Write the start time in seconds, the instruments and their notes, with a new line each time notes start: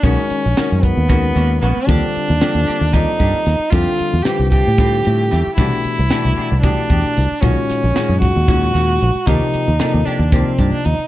0.03 fingered electric bass B1, grand piano D#3 G#3 C#4 F#4 A#4, clean electric guitar D#3 A#3 C#4 F#4, violin C#4, kick, closed hi-hat
0.30 muted fingered electric bass stroke, closed hi-hat
0.46 fingered electric bass A#1
0.56 grand piano D#3 G#3 C#4 F#4 A#4, clean electric guitar D#3 A#3 C#4 F#4, muted fingered electric bass stroke, snare, closed hi-hat
0.72 fingered electric bass F#2
0.83 violin B3, kick, closed hi-hat
0.97 fingered electric bass D#2
1.09 clean electric guitar D#3 A#3 C#4 F#4, grand piano D#3 G#3 C#4 F#4 A#4, kick, closed hi-hat
1.35 fingered electric bass D#2, clean electric guitar A#3 C#4 F#4, closed hi-hat
1.61 fingered electric bass A#1, clean electric guitar D#3 A#3 C#4 F#4, violin B3, closed hi-hat
1.77 muted fingered electric bass stroke
1.87 fingered electric bass D#2, grand piano D3 G3 C4 F4 A4, clean electric guitar F3 A#3 D4 G4, violin D4, kick, closed hi-hat
2.15 muted fingered electric bass stroke, closed hi-hat
2.30 fingered electric bass D#2
2.41 grand piano D3 G3 C4 F4 A4, clean electric guitar F3 A#3 D4 G4, snare, closed hi-hat
2.55 fingered electric bass D#2
2.66 clean electric guitar A#3 D4 G4, muted fingered electric bass stroke, closed hi-hat
2.81 fingered electric bass D#2
2.93 grand piano D#3 G3 C4 F4 A4, clean electric guitar F3 A#3 D4 G4, violin D#4, kick, closed hi-hat
3.19 fingered electric bass G2, clean electric guitar A#3 D4 G4, kick, closed hi-hat
3.34 muted fingered electric bass stroke
3.46 fingered electric bass D#2, snare, closed hi-hat
3.59 muted fingered electric bass stroke
3.71 fingered electric bass F2, grand piano D3 G3 C4 F4 A4, clean electric guitar E3 A3 C4 G4, violin F4, kick, closed hi-hat
3.99 muted fingered electric bass stroke, closed hi-hat
4.13 fingered electric bass E2
4.23 grand piano D3 G3 C4 F4 B4, clean electric guitar E3 A3 C4 G4, violin G4, muted fingered electric bass stroke, snare, closed hi-hat
4.39 fingered electric bass C2
4.50 clean electric guitar A3 C4 G4, violin G4, kick, closed hi-hat
4.67 fingered electric bass A2
4.77 grand piano D3 G3 C4 F4 A4, clean electric guitar E3 A3 C4 G4, kick, snare, closed hi-hat
5.05 fingered electric bass A2, clean electric guitar A3 C4 G4, closed hi-hat
5.31 fingered electric bass E2, clean electric guitar E3 A3 C4 G4, snare, closed hi-hat
5.47 muted fingered electric bass stroke
5.56 fingered electric bass C2, grand piano B2 E3 A3 D4 G4, clean electric guitar E3 B3 D4 G4, violin E4, kick, closed hi-hat
5.84 muted fingered electric bass stroke, closed hi-hat
5.99 fingered electric bass C2
6.09 grand piano B2 E3 A3 D4 E4, clean electric guitar E3 B3 D4 G4, snare, closed hi-hat
6.25 fingered electric bass C2
6.37 clean electric guitar B3 D4 G4, closed hi-hat
6.52 fingered electric bass C2
6.62 grand piano B2 E3 A3 D4 G4, clean electric guitar E3 B3 D4 G4, violin D4, kick, snare, closed hi-hat
6.90 fingered electric bass E2, clean electric guitar B3 D4 G4, kick, closed hi-hat
7.05 muted fingered electric bass stroke
7.17 fingered electric bass C2, closed hi-hat
7.41 fingered electric bass B1, grand piano A#2 D#3 G#3 C#4 F#4, clean electric guitar D#3 A#3 C#4 F#4, violin C#4, kick, closed hi-hat
7.70 muted fingered electric bass stroke, snare, closed hi-hat
7.84 fingered electric bass A#1
7.94 grand piano A#2 D#3 G#3 C#4 G#4, clean electric guitar D#3 A#3 C#4 F#4, muted fingered electric bass stroke, snare, closed hi-hat
8.09 fingered electric bass F#2
8.20 violin F#4, kick, snare, closed hi-hat
8.36 fingered electric bass D#2
8.47 grand piano A#2 D#3 G#3 C#4 F#4, clean electric guitar D#3 A#3 C#4 F#4, kick, closed hi-hat
8.74 fingered electric bass D#2, clean electric guitar A#3 C#4 F#4, snare, closed hi-hat
9.01 fingered electric bass A#1, closed hi-hat
9.15 muted fingered electric bass stroke
9.26 fingered electric bass D#2, grand piano C3 F3 A#3 D#4 G4, clean electric guitar F3 A#3 D4 G4, violin D#4, kick, closed hi-hat
9.54 muted fingered electric bass stroke, closed hi-hat
9.68 fingered electric bass D#2
9.79 grand piano C3 F3 A#3 D#4 A4, clean electric guitar F3 A#3 D4 G4, snare, closed hi-hat
9.94 fingered electric bass D#2
10.05 clean electric guitar A#3 D4 G4, violin D4, muted fingered electric bass stroke, closed hi-hat
10.19 fingered electric bass D#2
10.32 grand piano C3 F3 A#3 D#4 A#4, clean electric guitar F3 A#3 D4 G4, violin C4, kick, snare, closed hi-hat
10.58 fingered electric bass G2, clean electric guitar A#3 D4 G4, kick, closed hi-hat
10.72 violin D4, muted fingered electric bass stroke
10.85 fingered electric bass D#2, violin D#4, closed hi-hat
10.99 muted fingered electric bass stroke